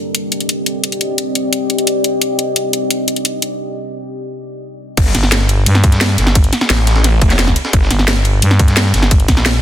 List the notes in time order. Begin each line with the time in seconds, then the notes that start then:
Already playing: C4 G4 D5 D#5
0.15 closed hi-hat
0.32 closed hi-hat
0.40 closed hi-hat
0.49 closed hi-hat
0.66 closed hi-hat
0.84 closed hi-hat
0.92 closed hi-hat
1.01 closed hi-hat
1.18 closed hi-hat
1.35 closed hi-hat
1.53 closed hi-hat
1.70 closed hi-hat
1.78 closed hi-hat
1.87 closed hi-hat
2.04 closed hi-hat
2.22 closed hi-hat
2.39 closed hi-hat
2.56 closed hi-hat
2.73 closed hi-hat
2.91 closed hi-hat
3.08 closed hi-hat
3.16 closed hi-hat
3.25 closed hi-hat
3.42 closed hi-hat
4.97 G1, kick, closed hi-hat, crash, ride
5.06 snare
5.15 G1, snare, closed hi-hat, ride
5.23 snare
5.32 snare, closed hi-hat, ride
5.41 snare
5.49 closed hi-hat, ride
5.66 G2, closed hi-hat, ride
5.75 snare, ride
5.84 kick, closed hi-hat, ride
5.92 snare, closed hi-hat
6.01 snare, closed hi-hat, ride
6.10 snare
6.18 G1, snare, closed hi-hat, ride
6.27 snare
6.35 kick, closed hi-hat, ride
6.44 closed hi-hat
6.53 snare, closed hi-hat, ride
6.61 snare
6.70 A1, snare, closed hi-hat, open hi-hat
6.78 snare
6.87 snare, closed hi-hat, ride
6.96 snare
7.04 snare, closed hi-hat, ride
7.22 F1, kick, closed hi-hat, ride
7.30 snare, closed hi-hat
7.39 snare, closed hi-hat, ride
7.47 kick, snare
7.56 closed hi-hat, ride
7.65 snare
7.73 G1, kick, closed hi-hat, ride
7.82 snare
7.91 G1, snare, closed hi-hat, ride
7.99 snare
8.08 snare, closed hi-hat, ride
8.16 snare
8.25 closed hi-hat, ride
8.42 G2, closed hi-hat, ride
8.51 snare, ride
8.59 kick, closed hi-hat, ride
8.68 snare, closed hi-hat
8.77 snare, closed hi-hat, ride
8.85 snare
8.94 G1, snare, closed hi-hat, ride
9.03 snare
9.11 kick, closed hi-hat, ride
9.20 closed hi-hat
9.28 A#1, kick, snare, closed hi-hat, ride
9.37 snare
9.46 snare, closed hi-hat, open hi-hat
9.54 snare